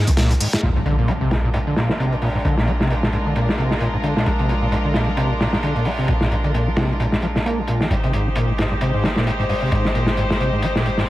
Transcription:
0.07 C2 G#3, closed hi-hat
0.17 A#2, snare, closed hi-hat
0.31 G#2, closed hi-hat
0.40 G#2, closed hi-hat, open hi-hat
0.53 G2, snare, closed hi-hat
0.62 A#1 A#2 G#3 D4 F4 A#4, closed hi-hat, impact
0.76 G#2, closed hi-hat
0.86 D3, closed hi-hat
0.98 A#2
1.08 A#3, closed hi-hat
1.21 C3
1.31 A#2, snare, closed hi-hat
1.44 A#2
1.54 G#2, closed hi-hat
1.67 D3
1.76 A#2, snare, closed hi-hat
1.89 A#3, snare
1.99 C3, closed hi-hat
2.12 A#2, closed hi-hat
2.22 A#2, open hi-hat
2.35 G#2
2.45 A#1 D3, closed hi-hat
2.57 A#2, snare
2.67 A#3, closed hi-hat
2.80 C3, snare
2.90 A#2, closed hi-hat
3.03 A#2, snare
3.12 G#2, closed hi-hat
3.26 D3
3.36 A#2, closed hi-hat
3.48 A#3, snare
3.58 C3, closed hi-hat
3.71 A#2, snare
3.80 A#2, closed hi-hat
3.94 G#2
4.03 D3, closed hi-hat
4.16 A#2, snare
4.26 A#1 A#3, closed hi-hat
4.39 C3, closed hi-hat
4.49 A#2, closed hi-hat
4.62 A#2
4.71 G#2, closed hi-hat
4.85 D3
4.94 A#2, snare, closed hi-hat
5.07 A#3
5.17 C3, closed hi-hat
5.30 A#2
5.40 A#2, snare, closed hi-hat
5.53 G#2, snare
5.63 D3, closed hi-hat
5.76 A#2, closed hi-hat
5.85 A#3, open hi-hat
5.99 C3
6.08 A#1 A#2, closed hi-hat
6.21 A#2, snare
6.32 G#2, closed hi-hat
6.44 D3, closed hi-hat
6.54 A#2, closed hi-hat
6.67 A#3
6.77 C3, snare, closed hi-hat
6.90 A#2
7.00 A#2, closed hi-hat
7.12 G#2, snare
7.22 F3, closed hi-hat
7.36 A#2, snare
7.46 A#3, closed hi-hat
7.58 D#3
7.67 A#2, closed hi-hat
7.81 F3, snare
7.90 G#1 G2 G#3 D#4 G4 C5, closed hi-hat
8.04 C3, closed hi-hat
8.13 G#2, closed hi-hat
8.27 G#3
8.35 A#2, closed hi-hat
8.49 G#2
8.58 G#2, snare, closed hi-hat
8.71 G2
8.81 C3, closed hi-hat
8.94 G#2
9.04 G#3, snare, closed hi-hat
9.16 A#2, snare
9.27 G#2, closed hi-hat
9.39 G#2, closed hi-hat
9.49 G2, open hi-hat
9.62 C3
9.72 G#1 G#2, closed hi-hat
9.85 G#3, snare
9.95 A#2, closed hi-hat
10.07 G#2, snare
10.17 G#2, closed hi-hat
10.30 G2, snare
10.40 C3, closed hi-hat
10.53 G#2
10.62 G#3, closed hi-hat
10.75 A#2, snare
10.85 G#2, closed hi-hat
10.97 G#2, snare

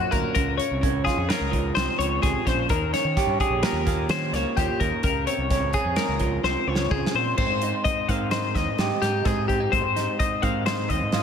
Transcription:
Already playing: F#2 F#3 C#4 F4 F#4
0.11 D2 A#3 A#4, kick, closed hi-hat
0.35 C#2 C#3 A#4, kick, closed hi-hat
0.58 C#5, closed hi-hat
0.71 C2
0.83 C#4, kick, closed hi-hat
0.94 C#2
1.05 F4 G#4, kick, snare, closed hi-hat
1.17 F2 G#4
1.29 G#2 A#4, snare, closed hi-hat
1.41 C#2
1.51 F3, kick, closed hi-hat
1.75 C2 C4 C5, snare, closed hi-hat
1.99 C#2 F3 C#5, closed hi-hat
2.22 C#2 C3 G#4, kick, snare, closed hi-hat
2.45 A#1 C#3 C5, kick, snare, closed hi-hat
2.69 D#2 D#3 A#4, kick, closed hi-hat
2.93 C#4 C#5, snare, closed hi-hat
3.04 D#3
3.17 G4, kick, snare, closed hi-hat
3.27 G2
3.40 G4 G#4, kick, closed hi-hat
3.50 A#1
3.63 A#2 A#4, snare, closed hi-hat
3.73 D#2
3.86 A#3, kick, snare, closed hi-hat
4.09 D#3 C#4 C5, snare, closed hi-hat
4.33 C#2 A#3 C#5, snare, closed hi-hat
4.57 D#2 F3 G4, kick, snare, closed hi-hat
4.80 D#2 D#3 A#4, kick, closed hi-hat
5.03 C#2 C#3 A#4, kick, closed hi-hat
5.27 C4 C#5, closed hi-hat
5.38 C2
5.50 C#4, kick, snare, closed hi-hat
5.62 C#2
5.73 G#4, kick, closed hi-hat
5.85 F2
5.96 G#2 A#4, snare, closed hi-hat
6.08 C#2
6.19 F3, kick, closed hi-hat
6.44 C2 C4 C5, snare
6.67 C#2 F3 C#5
6.75 snare
6.91 C#2 C#3 G#4, kick
7.07 snare
7.14 A#2 C4 C5
7.38 G#2 C4 C5, kick, crash
7.49 G#2
7.61 D#4, closed hi-hat
7.84 D#5, kick, closed hi-hat
8.09 G#2 D#3 C4 F5, kick, closed hi-hat
8.31 D#4 C5, snare, closed hi-hat
8.55 D#2 G#2 D#5, kick, snare, closed hi-hat
8.67 G#2
8.78 G#2 G4, snare, closed hi-hat
9.02 G#2 D#4 G4, snare, closed hi-hat
9.25 G#2 C4 G#4, kick, snare, closed hi-hat
9.48 C4 G4, kick, closed hi-hat
9.60 D#4
9.71 G#2 C4 C5, kick, closed hi-hat
9.84 G#2
9.96 D#4, snare, closed hi-hat
10.19 D#5, kick, closed hi-hat
10.42 G#2 D#3 C4 F5, kick, closed hi-hat
10.66 D#4 C5, snare, closed hi-hat
10.89 D#2 G#2 D#5, kick, closed hi-hat
11.02 G#2
11.12 G#2 F4, snare, closed hi-hat

